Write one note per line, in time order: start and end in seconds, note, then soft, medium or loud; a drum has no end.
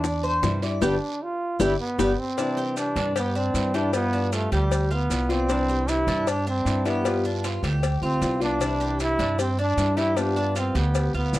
0.00 0.39 E2 medium
0.00 0.40 D4 medium
0.00 muted nylon-string guitar stroke medium
0.00 high bongo medium
0.00 long guiro medium
0.04 0.23 D5 medium
0.04 maracas medium
0.24 0.61 C5 medium
0.24 maracas soft
0.43 0.79 G2 medium
0.43 0.62 C3 medium
0.43 0.62 E3 medium
0.43 0.62 G3 medium
0.43 0.61 D4 medium
0.43 0.61 E4 medium
0.43 high bongo medium
0.43 low bongo medium
0.43 short guiro medium
0.43 maracas medium
0.62 0.80 G3 soft
0.62 0.80 D4 soft
0.62 0.81 E4 medium
0.62 0.81 D5 medium
0.62 short guiro medium
0.62 maracas soft
0.81 0.96 G1 medium
0.81 0.94 G3 loud
0.81 0.94 B3 medium
0.81 0.94 D4 loud
0.81 1.24 D4 medium
0.81 0.95 G4 medium
0.81 0.95 B4 medium
0.81 0.95 D5 medium
0.81 high bongo loud
0.81 long guiro loud
0.81 maracas medium
1.23 1.63 F4 loud
1.59 1.74 G1 medium
1.59 1.72 G3 medium
1.59 1.72 B3 medium
1.59 1.72 D4 medium
1.59 1.79 E4 medium
1.59 1.72 G4 loud
1.59 1.72 B4 medium
1.59 1.73 D5 medium
1.59 high bongo loud
1.59 long guiro loud
1.59 maracas loud
1.80 2.21 B3 medium
1.98 2.13 G1 medium
1.98 2.11 G3 loud
1.98 2.11 B3 loud
1.98 2.11 D4 loud
1.98 2.12 G4 loud
1.98 2.11 B4 medium
1.98 2.11 D5 medium
1.98 high bongo loud
1.98 long guiro loud
1.98 maracas loud
2.19 2.77 C4 loud
2.37 3.14 C3 medium
2.37 3.14 E3 medium
2.37 3.15 G3 medium
2.37 2.57 D4 medium
2.37 3.16 D4 medium
2.37 3.15 E4 medium
2.37 cowbell loud
2.37 maracas medium
2.57 2.95 G4 medium
2.57 maracas soft
2.77 3.14 D4 medium
2.77 cowbell medium
2.77 short guiro medium
2.77 maracas medium
2.96 3.50 G2 loud
2.96 3.15 D4 medium
2.96 cowbell medium
2.96 short guiro medium
2.96 maracas soft
3.15 3.38 B3 loud
3.15 3.35 G4 medium
3.15 muted nylon-string guitar stroke medium
3.15 cowbell loud
3.15 long guiro medium
3.15 maracas medium
3.35 3.77 C4 loud
3.35 3.73 D4 medium
3.35 maracas soft
3.54 4.46 G2 medium
3.54 3.73 E3 medium
3.54 3.73 G3 medium
3.54 3.73 D4 medium
3.54 3.73 E4 medium
3.54 cowbell medium
3.54 short guiro medium
3.54 maracas medium
3.74 3.94 E3 medium
3.74 3.92 G3 medium
3.74 3.93 D4 medium
3.74 3.94 D4 loud
3.74 3.93 E4 medium
3.74 4.12 G4 medium
3.74 cowbell medium
3.74 short guiro medium
3.74 maracas soft
3.93 4.71 G3 medium
3.93 4.70 B3 medium
3.93 4.35 B3 loud
3.93 4.71 F4 medium
3.93 cowbell loud
3.93 long guiro medium
3.93 maracas medium
4.13 4.32 D4 medium
4.13 maracas soft
4.32 4.53 A3 medium
4.32 4.51 F4 medium
4.32 cowbell medium
4.32 short guiro medium
4.32 maracas medium
4.52 5.06 D2 medium
4.52 4.94 G3 medium
4.52 4.90 G4 medium
4.52 cowbell medium
4.52 short guiro medium
4.52 maracas soft
4.71 muted nylon-string guitar stroke medium
4.71 cowbell loud
4.71 long guiro medium
4.71 maracas medium
4.91 5.33 B3 loud
4.91 5.29 F4 medium
4.91 maracas soft
5.10 6.01 C2 medium
5.10 5.29 G3 medium
5.10 5.29 B3 medium
5.10 5.28 F4 medium
5.10 cowbell medium
5.10 short guiro medium
5.10 maracas medium
5.29 5.49 B3 medium
5.29 5.91 C4 loud
5.29 5.48 F4 medium
5.29 5.49 D5 medium
5.29 short guiro medium
5.29 maracas soft
5.48 6.25 C3 medium
5.48 6.25 E3 medium
5.48 6.27 G3 medium
5.48 5.68 D4 medium
5.48 6.27 D4 medium
5.48 6.26 E4 medium
5.48 cowbell loud
5.48 long guiro medium
5.48 maracas medium
5.69 6.07 G4 medium
5.69 maracas soft
5.88 6.30 E4 loud
5.88 cowbell medium
5.88 short guiro medium
5.88 maracas medium
6.07 6.62 G2 loud
6.07 6.27 D4 medium
6.07 cowbell medium
6.07 short guiro medium
6.07 maracas soft
6.26 6.47 D4 loud
6.26 6.46 G4 medium
6.26 muted nylon-string guitar stroke medium
6.26 cowbell loud
6.26 long guiro medium
6.26 maracas medium
6.47 6.89 C4 loud
6.47 6.85 D4 medium
6.47 maracas soft
6.65 7.57 G2 medium
6.65 6.84 E3 medium
6.65 6.85 G3 medium
6.65 6.85 D4 medium
6.65 6.84 E4 medium
6.65 cowbell medium
6.65 short guiro medium
6.65 maracas medium
6.85 7.05 E3 medium
6.85 7.03 G3 medium
6.85 7.25 B3 loud
6.85 7.04 D4 medium
6.85 7.04 E4 medium
6.85 7.24 G4 medium
6.85 cowbell medium
6.85 short guiro medium
6.85 maracas soft
7.04 7.82 G3 medium
7.04 7.82 B3 medium
7.04 7.82 F4 medium
7.04 cowbell loud
7.04 long guiro medium
7.04 maracas medium
7.25 7.44 D4 medium
7.25 maracas soft
7.44 7.63 F4 medium
7.44 cowbell medium
7.44 short guiro medium
7.44 maracas medium
7.63 7.99 D2 medium
7.63 8.01 G4 medium
7.63 cowbell medium
7.63 short guiro medium
7.63 maracas soft
7.82 muted nylon-string guitar stroke medium
7.82 cowbell loud
7.82 long guiro medium
7.82 maracas medium
8.02 8.20 D2 medium
8.02 8.39 C4 loud
8.02 8.40 F4 medium
8.02 maracas soft
8.21 9.13 C2 medium
8.21 8.40 G3 medium
8.21 8.41 B3 medium
8.21 8.39 F4 medium
8.21 cowbell medium
8.21 short guiro medium
8.21 maracas medium
8.40 8.60 B3 medium
8.40 8.97 D4 loud
8.40 8.59 F4 medium
8.40 8.60 D5 medium
8.40 short guiro medium
8.40 maracas soft
8.60 9.37 C3 medium
8.60 9.37 E3 medium
8.60 9.38 G3 medium
8.60 8.80 D4 medium
8.60 9.39 D4 medium
8.60 9.38 E4 medium
8.60 cowbell loud
8.60 long guiro medium
8.60 maracas medium
8.80 9.18 G4 medium
8.80 maracas soft
9.00 9.37 E4 loud
9.00 cowbell medium
9.00 short guiro medium
9.00 maracas medium
9.19 9.74 G2 medium
9.19 9.38 D4 medium
9.19 cowbell medium
9.19 short guiro medium
9.19 maracas soft
9.38 9.58 C4 medium
9.38 9.58 G4 medium
9.38 muted nylon-string guitar stroke medium
9.38 cowbell loud
9.38 long guiro medium
9.38 maracas medium
9.59 9.96 D4 medium
9.59 10.01 D4 loud
9.59 maracas soft
9.77 10.69 G2 medium
9.77 9.96 E3 medium
9.77 9.97 G3 medium
9.77 9.96 D4 medium
9.77 9.95 E4 medium
9.77 cowbell medium
9.77 short guiro medium
9.77 maracas medium
9.97 10.17 E3 medium
9.97 10.14 G3 medium
9.97 10.16 D4 medium
9.97 10.16 E4 medium
9.97 10.20 E4 loud
9.97 10.35 G4 medium
9.97 cowbell medium
9.97 short guiro medium
9.97 maracas soft
10.16 10.93 G3 medium
10.16 10.93 B3 medium
10.16 10.57 D4 loud
10.16 10.93 F4 medium
10.16 cowbell loud
10.16 long guiro medium
10.16 maracas medium
10.37 10.55 D4 medium
10.37 maracas soft
10.56 10.78 C4 medium
10.56 10.75 F4 medium
10.56 cowbell medium
10.56 short guiro medium
10.56 maracas medium
10.75 11.11 D2 loud
10.75 11.15 B3 medium
10.75 11.13 G4 medium
10.75 cowbell medium
10.75 short guiro medium
10.75 maracas soft
10.94 muted nylon-string guitar stroke medium
10.94 cowbell loud
10.94 long guiro medium
10.94 maracas medium
11.14 11.32 D2 medium
11.14 11.39 B3 loud
11.14 11.39 F4 medium
11.14 maracas soft
11.33 11.39 C2 medium
11.33 11.39 G3 medium
11.33 11.39 B3 medium
11.33 11.39 F4 medium
11.33 cowbell medium
11.33 short guiro medium
11.33 maracas medium